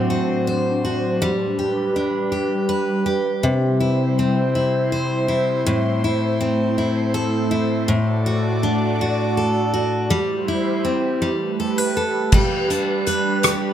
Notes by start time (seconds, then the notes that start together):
Already playing: A2 F#3 C4 D4 C5
0.10 F#4
0.47 C5
0.85 F#4
1.20 G3 B4
1.59 G4
1.96 D4
2.32 G4
2.69 B4
3.06 G4
3.43 C3 E4 C5
3.80 E4
4.19 C4
4.55 E4
4.92 C5
5.28 E4
5.66 A2 A3
6.04 E4
6.41 C4
6.78 E4
7.14 A4
7.51 E4
7.88 A2 F#4 D5
8.26 F#4
8.63 D4
9.01 F#4
9.37 A4
9.74 F#4
10.10 G3 E4 C5
10.48 E4
10.85 C4
11.21 G3 A3 G4 B4
11.60 A4
11.78 B4
11.97 A4
12.31 G3 D4 B4, kick, crash
12.70 D4, closed hi-hat
13.06 B4, closed hi-hat
13.43 G4, cross-stick, closed hi-hat